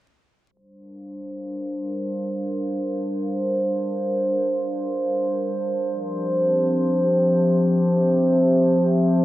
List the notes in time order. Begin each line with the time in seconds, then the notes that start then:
0.51 G3 C5
0.59 D4
0.71 F5 A5
0.78 A#4
5.91 F3
6.02 G4
6.09 C4
7.03 E5